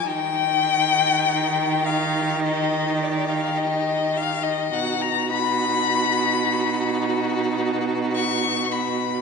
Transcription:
0.05 D#3 D#4 G4 G5
1.86 F5
2.44 D#5
3.02 D5
3.29 F5
3.57 D#5
4.17 F5
4.43 D#5
4.72 B2 D#4 F#4 F#5
5.02 A#5
5.31 B5
8.16 C#6
8.71 B5

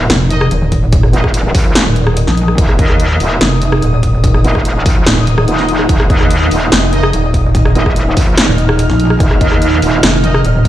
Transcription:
Already playing: A#2 D#3 D#4 A#4, impact
0.10 F1, snare, closed hi-hat
0.30 D#4 A#4 D#5, closed hi-hat
0.41 cross-stick
0.51 D#1, closed hi-hat
0.72 D#6, kick, closed hi-hat
0.93 kick, closed hi-hat
1.03 cross-stick
1.13 D#1 D#4 A#4 D#5, closed hi-hat
1.24 kick, cross-stick
1.34 closed hi-hat
1.55 A#1, kick, open hi-hat
1.75 F#1, snare, closed hi-hat
1.86 D#1
1.96 closed hi-hat
2.07 cross-stick
2.17 closed hi-hat
2.27 A#1, snare
2.37 closed hi-hat
2.48 cross-stick
2.58 D#1, kick, closed hi-hat
2.69 cross-stick
2.79 D#2 D#4 A#4 D#5, kick, closed hi-hat
2.90 cross-stick
3.00 closed hi-hat
3.20 D#1, open hi-hat
3.41 F1, snare, closed hi-hat
3.62 closed hi-hat
3.72 cross-stick
3.82 D#1, closed hi-hat
4.03 kick, closed hi-hat
4.24 kick, closed hi-hat
4.34 cross-stick
4.44 D#1 D#4 A#4 D#5, closed hi-hat
4.55 kick, cross-stick
4.65 closed hi-hat
4.86 A#1, kick, open hi-hat
5.06 D#1, snare, closed hi-hat
5.27 closed hi-hat
5.38 cross-stick
5.48 D#1, closed hi-hat
5.58 D#4 A#4 D#5, snare
5.69 closed hi-hat
5.79 cross-stick
5.89 D#1 D#5, kick, closed hi-hat
6.00 cross-stick
6.10 D#2 D#4 A#4 D#5, kick, closed hi-hat
6.21 cross-stick
6.31 closed hi-hat
6.51 D#1, open hi-hat
6.72 F1, snare, closed hi-hat
6.93 D#4 A#4 D#5, closed hi-hat
7.03 cross-stick
7.13 D#1, closed hi-hat
7.34 F6, kick, closed hi-hat
7.55 kick, closed hi-hat
7.65 cross-stick
7.75 D#1 D#4 A#4 D#5, closed hi-hat
7.86 kick, cross-stick
7.96 closed hi-hat
8.17 A#1, kick, open hi-hat
8.38 F#1, snare, closed hi-hat
8.48 D#1
8.58 closed hi-hat
8.69 cross-stick
8.79 closed hi-hat
8.90 A#1, snare
9.00 closed hi-hat
9.10 cross-stick
9.20 D#1, kick, closed hi-hat
9.31 cross-stick
9.41 D#2 D#4 A#4 D#5, kick, closed hi-hat
9.52 cross-stick
9.62 closed hi-hat
9.82 D#1, open hi-hat
10.03 F1, snare, closed hi-hat
10.24 D#4 A#4 D#5, closed hi-hat
10.34 cross-stick
10.44 D#1, closed hi-hat
10.65 kick, closed hi-hat

